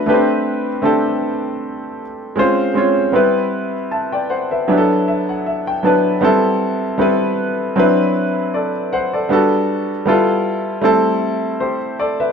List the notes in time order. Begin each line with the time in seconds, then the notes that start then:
0.06 A3 B3 D4 G4 B4
0.14 C4
0.82 A3 C4 D4 G4 A4
2.36 G#3 C4 C#4 F4 C5
2.74 G#3 C4 C#4 F4 C#5
3.12 G3 B3 C4 E4 B4
3.91 E5 A5
4.12 D5 G5
4.30 C5 F#5
4.51 B4 E5
4.68 F#3 B3 D4 E4 G4
4.78 A4
5.08 E5
5.29 F#5
5.46 E5
5.67 G5
5.83 F#3 B3 D4 E4 B4 A5
6.21 G3 B3 C4 E4 A4
6.98 G3 B3 C4 E4 B4
7.76 F#3 C4 D4 E4 B4
8.54 A4 D5
8.93 C5 F#5
9.13 A4 D5
9.29 G3 B3 D4 F#4 A4
10.06 G3 B3 E4 F4 A4
10.81 G3 A3 C4 E4 A4
11.60 G4 C5
12.00 A4 D5
12.20 B4 E5